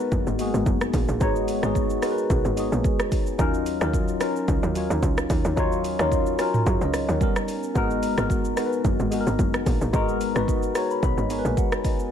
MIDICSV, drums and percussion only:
0, 0, Header, 1, 2, 480
1, 0, Start_track
1, 0, Tempo, 545455
1, 1063, Time_signature, 4, 2, 24, 8
1, 10660, End_track
2, 0, Start_track
2, 0, Title_t, "Drums"
2, 0, Note_on_c, 9, 82, 48
2, 85, Note_off_c, 9, 82, 0
2, 104, Note_on_c, 9, 36, 109
2, 104, Note_on_c, 9, 82, 70
2, 192, Note_off_c, 9, 36, 0
2, 192, Note_off_c, 9, 82, 0
2, 236, Note_on_c, 9, 82, 46
2, 324, Note_off_c, 9, 82, 0
2, 343, Note_on_c, 9, 46, 56
2, 343, Note_on_c, 9, 82, 96
2, 431, Note_off_c, 9, 46, 0
2, 431, Note_off_c, 9, 82, 0
2, 476, Note_on_c, 9, 82, 63
2, 564, Note_off_c, 9, 82, 0
2, 582, Note_on_c, 9, 36, 111
2, 583, Note_on_c, 9, 82, 69
2, 670, Note_off_c, 9, 36, 0
2, 671, Note_off_c, 9, 82, 0
2, 713, Note_on_c, 9, 82, 56
2, 715, Note_on_c, 9, 37, 100
2, 801, Note_off_c, 9, 82, 0
2, 803, Note_off_c, 9, 37, 0
2, 823, Note_on_c, 9, 36, 96
2, 823, Note_on_c, 9, 46, 51
2, 823, Note_on_c, 9, 82, 86
2, 911, Note_off_c, 9, 36, 0
2, 911, Note_off_c, 9, 46, 0
2, 911, Note_off_c, 9, 82, 0
2, 954, Note_on_c, 9, 82, 54
2, 1042, Note_off_c, 9, 82, 0
2, 1062, Note_on_c, 9, 82, 83
2, 1063, Note_on_c, 9, 36, 121
2, 1150, Note_off_c, 9, 82, 0
2, 1151, Note_off_c, 9, 36, 0
2, 1195, Note_on_c, 9, 82, 50
2, 1283, Note_off_c, 9, 82, 0
2, 1302, Note_on_c, 9, 46, 55
2, 1302, Note_on_c, 9, 82, 94
2, 1390, Note_off_c, 9, 46, 0
2, 1390, Note_off_c, 9, 82, 0
2, 1433, Note_on_c, 9, 82, 55
2, 1434, Note_on_c, 9, 37, 94
2, 1521, Note_off_c, 9, 82, 0
2, 1522, Note_off_c, 9, 37, 0
2, 1542, Note_on_c, 9, 36, 94
2, 1546, Note_on_c, 9, 82, 82
2, 1630, Note_off_c, 9, 36, 0
2, 1634, Note_off_c, 9, 82, 0
2, 1671, Note_on_c, 9, 82, 61
2, 1759, Note_off_c, 9, 82, 0
2, 1781, Note_on_c, 9, 46, 58
2, 1781, Note_on_c, 9, 82, 102
2, 1782, Note_on_c, 9, 37, 92
2, 1869, Note_off_c, 9, 46, 0
2, 1869, Note_off_c, 9, 82, 0
2, 1870, Note_off_c, 9, 37, 0
2, 1917, Note_on_c, 9, 82, 47
2, 2005, Note_off_c, 9, 82, 0
2, 2024, Note_on_c, 9, 36, 113
2, 2025, Note_on_c, 9, 82, 72
2, 2112, Note_off_c, 9, 36, 0
2, 2113, Note_off_c, 9, 82, 0
2, 2156, Note_on_c, 9, 82, 46
2, 2244, Note_off_c, 9, 82, 0
2, 2264, Note_on_c, 9, 46, 56
2, 2264, Note_on_c, 9, 82, 94
2, 2352, Note_off_c, 9, 46, 0
2, 2352, Note_off_c, 9, 82, 0
2, 2397, Note_on_c, 9, 82, 61
2, 2485, Note_off_c, 9, 82, 0
2, 2503, Note_on_c, 9, 36, 108
2, 2504, Note_on_c, 9, 82, 71
2, 2591, Note_off_c, 9, 36, 0
2, 2592, Note_off_c, 9, 82, 0
2, 2634, Note_on_c, 9, 82, 54
2, 2636, Note_on_c, 9, 37, 106
2, 2722, Note_off_c, 9, 82, 0
2, 2724, Note_off_c, 9, 37, 0
2, 2744, Note_on_c, 9, 36, 102
2, 2744, Note_on_c, 9, 46, 53
2, 2744, Note_on_c, 9, 82, 86
2, 2832, Note_off_c, 9, 36, 0
2, 2832, Note_off_c, 9, 46, 0
2, 2832, Note_off_c, 9, 82, 0
2, 2874, Note_on_c, 9, 82, 58
2, 2962, Note_off_c, 9, 82, 0
2, 2982, Note_on_c, 9, 82, 91
2, 2983, Note_on_c, 9, 36, 120
2, 3070, Note_off_c, 9, 82, 0
2, 3071, Note_off_c, 9, 36, 0
2, 3115, Note_on_c, 9, 82, 46
2, 3203, Note_off_c, 9, 82, 0
2, 3222, Note_on_c, 9, 46, 55
2, 3222, Note_on_c, 9, 82, 95
2, 3310, Note_off_c, 9, 46, 0
2, 3310, Note_off_c, 9, 82, 0
2, 3354, Note_on_c, 9, 37, 94
2, 3354, Note_on_c, 9, 82, 55
2, 3442, Note_off_c, 9, 37, 0
2, 3442, Note_off_c, 9, 82, 0
2, 3462, Note_on_c, 9, 36, 97
2, 3466, Note_on_c, 9, 82, 81
2, 3550, Note_off_c, 9, 36, 0
2, 3554, Note_off_c, 9, 82, 0
2, 3592, Note_on_c, 9, 82, 61
2, 3680, Note_off_c, 9, 82, 0
2, 3701, Note_on_c, 9, 46, 61
2, 3701, Note_on_c, 9, 82, 102
2, 3702, Note_on_c, 9, 37, 96
2, 3789, Note_off_c, 9, 46, 0
2, 3789, Note_off_c, 9, 82, 0
2, 3790, Note_off_c, 9, 37, 0
2, 3837, Note_on_c, 9, 82, 47
2, 3925, Note_off_c, 9, 82, 0
2, 3944, Note_on_c, 9, 36, 113
2, 3944, Note_on_c, 9, 82, 70
2, 4032, Note_off_c, 9, 36, 0
2, 4032, Note_off_c, 9, 82, 0
2, 4076, Note_on_c, 9, 82, 48
2, 4164, Note_off_c, 9, 82, 0
2, 4184, Note_on_c, 9, 46, 55
2, 4184, Note_on_c, 9, 82, 96
2, 4272, Note_off_c, 9, 46, 0
2, 4272, Note_off_c, 9, 82, 0
2, 4316, Note_on_c, 9, 82, 66
2, 4404, Note_off_c, 9, 82, 0
2, 4422, Note_on_c, 9, 36, 106
2, 4424, Note_on_c, 9, 82, 73
2, 4510, Note_off_c, 9, 36, 0
2, 4512, Note_off_c, 9, 82, 0
2, 4554, Note_on_c, 9, 82, 55
2, 4556, Note_on_c, 9, 37, 103
2, 4642, Note_off_c, 9, 82, 0
2, 4644, Note_off_c, 9, 37, 0
2, 4663, Note_on_c, 9, 36, 101
2, 4663, Note_on_c, 9, 46, 50
2, 4663, Note_on_c, 9, 82, 86
2, 4751, Note_off_c, 9, 36, 0
2, 4751, Note_off_c, 9, 46, 0
2, 4751, Note_off_c, 9, 82, 0
2, 4794, Note_on_c, 9, 82, 59
2, 4882, Note_off_c, 9, 82, 0
2, 4902, Note_on_c, 9, 82, 89
2, 4903, Note_on_c, 9, 36, 127
2, 4990, Note_off_c, 9, 82, 0
2, 4991, Note_off_c, 9, 36, 0
2, 5035, Note_on_c, 9, 82, 48
2, 5123, Note_off_c, 9, 82, 0
2, 5143, Note_on_c, 9, 46, 55
2, 5143, Note_on_c, 9, 82, 96
2, 5231, Note_off_c, 9, 46, 0
2, 5231, Note_off_c, 9, 82, 0
2, 5273, Note_on_c, 9, 82, 54
2, 5274, Note_on_c, 9, 37, 98
2, 5361, Note_off_c, 9, 82, 0
2, 5362, Note_off_c, 9, 37, 0
2, 5382, Note_on_c, 9, 36, 95
2, 5386, Note_on_c, 9, 82, 80
2, 5470, Note_off_c, 9, 36, 0
2, 5474, Note_off_c, 9, 82, 0
2, 5512, Note_on_c, 9, 82, 58
2, 5600, Note_off_c, 9, 82, 0
2, 5621, Note_on_c, 9, 46, 59
2, 5621, Note_on_c, 9, 82, 98
2, 5622, Note_on_c, 9, 37, 90
2, 5709, Note_off_c, 9, 46, 0
2, 5709, Note_off_c, 9, 82, 0
2, 5710, Note_off_c, 9, 37, 0
2, 5755, Note_on_c, 9, 45, 93
2, 5757, Note_on_c, 9, 82, 49
2, 5843, Note_off_c, 9, 45, 0
2, 5845, Note_off_c, 9, 82, 0
2, 5864, Note_on_c, 9, 36, 109
2, 5865, Note_on_c, 9, 82, 69
2, 5952, Note_off_c, 9, 36, 0
2, 5953, Note_off_c, 9, 82, 0
2, 5997, Note_on_c, 9, 82, 48
2, 6085, Note_off_c, 9, 82, 0
2, 6104, Note_on_c, 9, 37, 94
2, 6105, Note_on_c, 9, 46, 55
2, 6105, Note_on_c, 9, 82, 97
2, 6192, Note_off_c, 9, 37, 0
2, 6193, Note_off_c, 9, 46, 0
2, 6193, Note_off_c, 9, 82, 0
2, 6238, Note_on_c, 9, 82, 62
2, 6326, Note_off_c, 9, 82, 0
2, 6343, Note_on_c, 9, 36, 103
2, 6345, Note_on_c, 9, 82, 72
2, 6431, Note_off_c, 9, 36, 0
2, 6433, Note_off_c, 9, 82, 0
2, 6476, Note_on_c, 9, 82, 55
2, 6478, Note_on_c, 9, 37, 104
2, 6564, Note_off_c, 9, 82, 0
2, 6566, Note_off_c, 9, 37, 0
2, 6585, Note_on_c, 9, 46, 53
2, 6585, Note_on_c, 9, 82, 84
2, 6673, Note_off_c, 9, 46, 0
2, 6673, Note_off_c, 9, 82, 0
2, 6715, Note_on_c, 9, 82, 57
2, 6803, Note_off_c, 9, 82, 0
2, 6824, Note_on_c, 9, 36, 121
2, 6824, Note_on_c, 9, 82, 83
2, 6912, Note_off_c, 9, 36, 0
2, 6912, Note_off_c, 9, 82, 0
2, 6957, Note_on_c, 9, 82, 49
2, 7045, Note_off_c, 9, 82, 0
2, 7064, Note_on_c, 9, 46, 57
2, 7064, Note_on_c, 9, 82, 94
2, 7152, Note_off_c, 9, 46, 0
2, 7152, Note_off_c, 9, 82, 0
2, 7195, Note_on_c, 9, 37, 96
2, 7195, Note_on_c, 9, 82, 55
2, 7283, Note_off_c, 9, 37, 0
2, 7283, Note_off_c, 9, 82, 0
2, 7302, Note_on_c, 9, 36, 100
2, 7307, Note_on_c, 9, 82, 80
2, 7390, Note_off_c, 9, 36, 0
2, 7395, Note_off_c, 9, 82, 0
2, 7432, Note_on_c, 9, 82, 60
2, 7520, Note_off_c, 9, 82, 0
2, 7542, Note_on_c, 9, 46, 60
2, 7542, Note_on_c, 9, 82, 98
2, 7543, Note_on_c, 9, 37, 93
2, 7630, Note_off_c, 9, 46, 0
2, 7630, Note_off_c, 9, 82, 0
2, 7631, Note_off_c, 9, 37, 0
2, 7678, Note_on_c, 9, 82, 50
2, 7766, Note_off_c, 9, 82, 0
2, 7784, Note_on_c, 9, 36, 112
2, 7785, Note_on_c, 9, 82, 71
2, 7872, Note_off_c, 9, 36, 0
2, 7873, Note_off_c, 9, 82, 0
2, 7916, Note_on_c, 9, 82, 48
2, 8004, Note_off_c, 9, 82, 0
2, 8024, Note_on_c, 9, 46, 56
2, 8024, Note_on_c, 9, 82, 93
2, 8112, Note_off_c, 9, 46, 0
2, 8112, Note_off_c, 9, 82, 0
2, 8157, Note_on_c, 9, 82, 62
2, 8245, Note_off_c, 9, 82, 0
2, 8263, Note_on_c, 9, 36, 102
2, 8264, Note_on_c, 9, 82, 71
2, 8351, Note_off_c, 9, 36, 0
2, 8352, Note_off_c, 9, 82, 0
2, 8394, Note_on_c, 9, 82, 54
2, 8396, Note_on_c, 9, 37, 108
2, 8482, Note_off_c, 9, 82, 0
2, 8484, Note_off_c, 9, 37, 0
2, 8504, Note_on_c, 9, 36, 101
2, 8504, Note_on_c, 9, 46, 50
2, 8504, Note_on_c, 9, 82, 86
2, 8592, Note_off_c, 9, 36, 0
2, 8592, Note_off_c, 9, 46, 0
2, 8592, Note_off_c, 9, 82, 0
2, 8634, Note_on_c, 9, 82, 58
2, 8722, Note_off_c, 9, 82, 0
2, 8743, Note_on_c, 9, 36, 120
2, 8743, Note_on_c, 9, 82, 90
2, 8831, Note_off_c, 9, 36, 0
2, 8831, Note_off_c, 9, 82, 0
2, 8876, Note_on_c, 9, 82, 48
2, 8964, Note_off_c, 9, 82, 0
2, 8983, Note_on_c, 9, 46, 58
2, 8983, Note_on_c, 9, 82, 95
2, 9071, Note_off_c, 9, 46, 0
2, 9071, Note_off_c, 9, 82, 0
2, 9114, Note_on_c, 9, 82, 57
2, 9115, Note_on_c, 9, 37, 93
2, 9202, Note_off_c, 9, 82, 0
2, 9203, Note_off_c, 9, 37, 0
2, 9222, Note_on_c, 9, 36, 96
2, 9227, Note_on_c, 9, 82, 81
2, 9310, Note_off_c, 9, 36, 0
2, 9315, Note_off_c, 9, 82, 0
2, 9352, Note_on_c, 9, 82, 62
2, 9440, Note_off_c, 9, 82, 0
2, 9462, Note_on_c, 9, 46, 58
2, 9462, Note_on_c, 9, 82, 99
2, 9463, Note_on_c, 9, 37, 88
2, 9550, Note_off_c, 9, 46, 0
2, 9550, Note_off_c, 9, 82, 0
2, 9551, Note_off_c, 9, 37, 0
2, 9598, Note_on_c, 9, 82, 47
2, 9686, Note_off_c, 9, 82, 0
2, 9704, Note_on_c, 9, 36, 110
2, 9705, Note_on_c, 9, 82, 68
2, 9792, Note_off_c, 9, 36, 0
2, 9793, Note_off_c, 9, 82, 0
2, 9837, Note_on_c, 9, 82, 46
2, 9925, Note_off_c, 9, 82, 0
2, 9945, Note_on_c, 9, 46, 57
2, 9945, Note_on_c, 9, 82, 94
2, 10033, Note_off_c, 9, 46, 0
2, 10033, Note_off_c, 9, 82, 0
2, 10077, Note_on_c, 9, 82, 65
2, 10165, Note_off_c, 9, 82, 0
2, 10183, Note_on_c, 9, 36, 108
2, 10184, Note_on_c, 9, 82, 74
2, 10271, Note_off_c, 9, 36, 0
2, 10272, Note_off_c, 9, 82, 0
2, 10314, Note_on_c, 9, 82, 55
2, 10316, Note_on_c, 9, 37, 105
2, 10402, Note_off_c, 9, 82, 0
2, 10404, Note_off_c, 9, 37, 0
2, 10424, Note_on_c, 9, 36, 97
2, 10424, Note_on_c, 9, 46, 51
2, 10424, Note_on_c, 9, 82, 85
2, 10512, Note_off_c, 9, 36, 0
2, 10512, Note_off_c, 9, 46, 0
2, 10512, Note_off_c, 9, 82, 0
2, 10555, Note_on_c, 9, 82, 56
2, 10643, Note_off_c, 9, 82, 0
2, 10660, End_track
0, 0, End_of_file